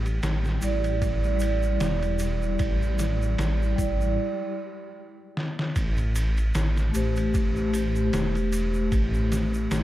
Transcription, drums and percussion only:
0.06 ride, shaker
0.23 snare, ride, shaker
0.44 snare, shaker
0.62 ride, shaker
0.84 ride, shaker
1.02 kick, ride, shaker
1.24 shaker
1.39 ride, shaker
1.63 shaker
1.80 snare, ride, shaker
2.03 ride, shaker
2.19 ride, shaker
2.42 shaker
2.59 kick, ride, shaker
2.82 shaker
2.99 snare, ride, shaker
3.22 shaker
3.38 snare, ride, shaker
3.62 shaker
3.78 kick, ride, shaker
4.01 shaker
5.37 snare
5.59 snare
5.76 kick, ride, shaker
5.97 ride, shaker
6.15 ride, shaker
6.37 ride, shaker
6.54 snare, ride, shaker
6.77 snare, shaker
6.94 ride, shaker
7.16 ride, shaker
7.34 kick, ride, shaker
7.56 shaker
7.74 ride, shaker
7.96 shaker
8.13 snare, ride, shaker
8.35 ride, shaker
8.52 ride, shaker
8.74 shaker
8.92 kick, ride, shaker
9.14 shaker
9.32 snare, ride, shaker
9.54 shaker
9.71 snare, ride, shaker

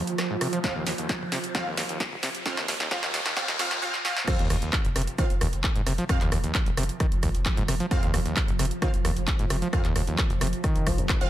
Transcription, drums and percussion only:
0.07 closed hi-hat
0.18 cross-stick, snare, closed hi-hat
0.41 cross-stick, open hi-hat
0.53 closed hi-hat
0.64 kick, snare, closed hi-hat
0.87 snare, open hi-hat
0.98 closed hi-hat
1.09 kick, snare, closed hi-hat
1.32 snare, open hi-hat
1.44 closed hi-hat
1.55 kick, snare, closed hi-hat
1.77 snare, open hi-hat
1.89 closed hi-hat
2.00 kick, snare, closed hi-hat
2.23 snare, open hi-hat
2.35 closed hi-hat
2.46 kick, snare, closed hi-hat
2.57 snare
2.68 snare, open hi-hat
2.80 snare, closed hi-hat
2.91 kick, snare, closed hi-hat
3.03 snare
3.14 snare, open hi-hat
3.26 snare, closed hi-hat
3.37 kick, snare, closed hi-hat
3.48 snare
3.59 kick, snare, open hi-hat
3.71 snare, closed hi-hat
3.94 snare
4.05 snare
4.17 snare
4.28 kick, cross-stick, closed hi-hat, crash
4.39 closed hi-hat
4.50 cross-stick, open hi-hat
4.62 closed hi-hat
4.73 kick, cross-stick, clap, closed hi-hat
4.85 closed hi-hat
4.96 cross-stick, open hi-hat
5.02 closed hi-hat
5.07 closed hi-hat
5.18 kick, cross-stick, closed hi-hat
5.30 closed hi-hat
5.41 cross-stick, open hi-hat
5.53 closed hi-hat
5.64 kick, cross-stick, clap, closed hi-hat
5.76 closed hi-hat
5.87 cross-stick, open hi-hat
5.98 closed hi-hat
6.09 kick, cross-stick, closed hi-hat
6.21 clap, closed hi-hat
6.32 cross-stick, open hi-hat
6.44 closed hi-hat
6.55 kick, cross-stick, clap, closed hi-hat
6.66 closed hi-hat
6.77 cross-stick, open hi-hat
6.83 closed hi-hat
6.89 closed hi-hat
7.00 kick, cross-stick, closed hi-hat
7.12 closed hi-hat
7.23 kick, cross-stick, open hi-hat
7.35 closed hi-hat
7.46 kick, cross-stick, clap, closed hi-hat
7.57 closed hi-hat
7.68 cross-stick, open hi-hat
7.80 closed hi-hat
7.91 kick, cross-stick, closed hi-hat
8.03 closed hi-hat
8.14 cross-stick, open hi-hat
8.26 closed hi-hat
8.37 kick, cross-stick, clap, closed hi-hat
8.48 closed hi-hat
8.59 cross-stick, open hi-hat
8.65 closed hi-hat
8.71 closed hi-hat
8.82 kick, cross-stick, closed hi-hat
8.94 closed hi-hat
9.05 cross-stick, open hi-hat
9.17 closed hi-hat
9.28 kick, cross-stick, clap, closed hi-hat
9.39 closed hi-hat
9.50 cross-stick, open hi-hat
9.62 closed hi-hat
9.73 kick, cross-stick, closed hi-hat
9.85 clap, closed hi-hat
9.96 cross-stick, open hi-hat
10.07 closed hi-hat
10.18 kick, cross-stick, clap, closed hi-hat
10.30 closed hi-hat
10.41 cross-stick, open hi-hat
10.47 closed hi-hat
10.53 closed hi-hat
10.64 kick, cross-stick, closed hi-hat
10.76 closed hi-hat
10.87 kick, cross-stick, open hi-hat
10.98 closed hi-hat
11.09 kick, cross-stick, clap, closed hi-hat
11.21 closed hi-hat

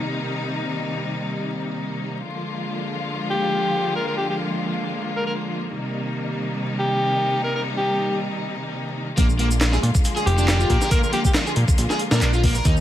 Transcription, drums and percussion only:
9.18 kick, closed hi-hat, shaker
9.29 shaker
9.39 closed hi-hat
9.51 shaker
9.61 snare, clap, closed hi-hat, shaker
9.73 snare, shaker
9.83 closed hi-hat
9.95 kick, shaker
10.05 closed hi-hat, shaker
10.17 closed hi-hat, shaker
10.27 closed hi-hat
10.38 shaker
10.48 snare, clap, closed hi-hat, shaker
10.60 shaker
10.70 kick, closed hi-hat
10.82 snare, shaker
10.91 kick, closed hi-hat, shaker
11.04 shaker
11.13 closed hi-hat
11.25 kick, shaker
11.34 snare, clap, closed hi-hat, shaker
11.47 shaker
11.56 closed hi-hat
11.68 kick, shaker
11.78 closed hi-hat, shaker
11.90 snare, shaker
11.99 closed hi-hat
12.11 snare, shaker
12.22 clap, closed hi-hat, shaker
12.33 shaker
12.43 kick, open hi-hat
12.55 shaker
12.65 kick, closed hi-hat, shaker
12.77 shaker

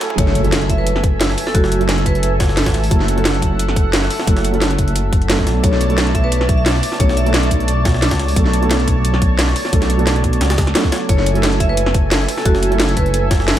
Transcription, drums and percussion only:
0.01 kick, snare, closed hi-hat
0.10 kick
0.18 kick, closed hi-hat
0.27 snare
0.35 closed hi-hat
0.44 closed hi-hat
0.52 snare, closed hi-hat
0.61 closed hi-hat
0.69 kick, closed hi-hat
0.87 closed hi-hat
0.96 snare
1.04 kick, closed hi-hat
1.21 snare, closed hi-hat
1.30 snare
1.38 closed hi-hat, open hi-hat
1.47 snare
1.55 kick, closed hi-hat
1.64 snare
1.72 closed hi-hat
1.81 closed hi-hat
1.89 snare, closed hi-hat
1.98 closed hi-hat
2.06 kick, closed hi-hat
2.15 closed hi-hat
2.23 closed hi-hat
2.40 kick, snare, closed hi-hat
2.49 snare
2.57 snare, closed hi-hat, open hi-hat
2.66 kick, snare, closed hi-hat
2.74 snare, closed hi-hat
2.84 open hi-hat
2.91 kick, closed hi-hat
3.00 snare
3.08 closed hi-hat
3.18 closed hi-hat
3.25 snare, closed hi-hat
3.34 closed hi-hat
3.42 kick, closed hi-hat
3.59 closed hi-hat
3.69 snare
3.76 kick, closed hi-hat
3.93 snare, closed hi-hat
4.02 snare
4.10 closed hi-hat, open hi-hat
4.20 snare
4.27 kick, closed hi-hat
4.37 snare, closed hi-hat
4.44 closed hi-hat
4.54 closed hi-hat
4.62 snare, closed hi-hat
4.71 snare, closed hi-hat
4.79 kick, closed hi-hat
4.88 closed hi-hat
4.96 closed hi-hat
5.13 kick, closed hi-hat
5.22 closed hi-hat
5.30 snare, closed hi-hat
5.39 kick, snare
5.47 snare, closed hi-hat
5.64 kick, closed hi-hat
5.73 snare
5.81 closed hi-hat
5.90 closed hi-hat
5.98 snare, closed hi-hat
6.07 closed hi-hat
6.15 kick, closed hi-hat
6.32 closed hi-hat
6.41 snare
6.49 kick, closed hi-hat
6.66 snare, closed hi-hat
6.75 snare
6.83 closed hi-hat, open hi-hat
6.92 snare
7.00 kick, closed hi-hat
7.09 snare
7.17 closed hi-hat
7.26 closed hi-hat
7.34 snare, closed hi-hat
7.43 closed hi-hat
7.51 kick, closed hi-hat
7.60 closed hi-hat
7.68 closed hi-hat
7.85 kick, snare, closed hi-hat
7.94 snare
8.02 snare, closed hi-hat, open hi-hat
8.11 kick, snare, closed hi-hat
8.19 snare, closed hi-hat
8.28 open hi-hat
8.36 kick, closed hi-hat
8.46 snare
8.53 closed hi-hat
8.63 closed hi-hat
8.71 snare, closed hi-hat
8.80 closed hi-hat
8.88 kick, closed hi-hat
9.05 closed hi-hat
9.14 snare
9.22 kick, closed hi-hat
9.39 snare, closed hi-hat
9.48 snare
9.56 closed hi-hat, open hi-hat
9.65 snare
9.73 kick, closed hi-hat
9.82 snare, closed hi-hat
9.90 closed hi-hat
9.99 closed hi-hat
10.07 snare, closed hi-hat
10.16 snare, closed hi-hat
10.24 kick, closed hi-hat
10.33 closed hi-hat
10.41 snare, closed hi-hat
10.50 snare, closed hi-hat
10.58 kick, snare, closed hi-hat
10.67 snare, closed hi-hat
10.75 snare, closed hi-hat
10.84 kick, snare
10.92 snare, closed hi-hat
11.09 kick, closed hi-hat
11.18 snare
11.26 closed hi-hat
11.35 closed hi-hat
11.43 snare, closed hi-hat
11.52 closed hi-hat
11.60 kick, closed hi-hat
11.77 closed hi-hat
11.86 snare
11.94 kick, closed hi-hat
12.11 snare, closed hi-hat
12.20 snare
12.28 closed hi-hat, open hi-hat
12.38 snare
12.45 kick, closed hi-hat
12.55 snare
12.63 closed hi-hat
12.72 closed hi-hat
12.80 snare, closed hi-hat
12.89 closed hi-hat
12.97 kick, closed hi-hat
13.06 closed hi-hat
13.14 closed hi-hat
13.31 kick, snare, closed hi-hat
13.40 snare
13.48 snare, closed hi-hat, open hi-hat

